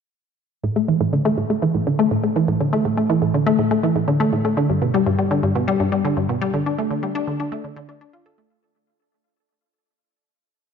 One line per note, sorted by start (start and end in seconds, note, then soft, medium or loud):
0.64 0.70 A2 medium
0.76 0.80 A3 medium
0.88 0.97 E3 medium
1.01 1.07 A2 medium
1.13 1.17 D3 medium
1.25 1.34 A3 medium
1.38 1.44 A2 medium
1.50 1.54 A3 medium
1.62 1.71 E3 medium
1.75 1.81 A2 medium
1.87 1.90 D3 medium
1.99 2.08 A3 medium
2.11 2.17 A2 medium
2.24 2.27 A3 medium
2.36 2.45 E3 medium
2.48 2.54 A2 medium
2.61 2.64 D3 medium
2.73 2.82 A3 medium
2.85 2.91 A2 medium
2.97 3.01 A3 medium
3.10 3.19 E3 medium
3.22 3.28 A2 medium
3.34 3.38 D3 medium
3.46 3.56 A3 loud
3.59 3.65 A2 medium
3.71 3.75 A3 medium
3.83 3.92 E3 medium
3.96 4.02 A2 medium
4.08 4.12 D3 medium
4.20 4.29 A3 medium
4.33 4.39 A2 medium
4.45 4.48 A3 medium
4.57 4.66 D3 medium
4.70 4.76 G2 medium
4.82 4.85 B2 medium
4.94 5.03 G3 loud
5.06 5.12 G2 medium
5.19 5.22 G3 medium
5.31 5.40 D3 medium
5.43 5.49 G2 medium
5.55 5.59 B2 medium
5.68 5.77 G3 loud
5.80 5.86 G2 medium
5.92 5.96 G3 medium
6.05 6.14 D3 medium
6.17 6.23 G2 medium
6.29 6.33 B2 medium
6.42 6.51 G3 loud
6.54 6.60 D3 medium
6.66 6.70 D4 medium
6.78 6.88 A3 medium
6.91 6.97 D3 medium
7.03 7.07 G3 medium
7.15 7.24 D4 loud
7.27 7.34 D3 medium
7.40 7.44 D4 medium
7.52 7.61 A3 medium
7.64 7.71 D3 medium
7.76 7.86 D3 loud
7.89 7.93 D4 medium
8.01 8.05 D4 medium
8.13 8.23 F4 medium
8.26 8.32 A4 medium
8.38 8.44 A3 medium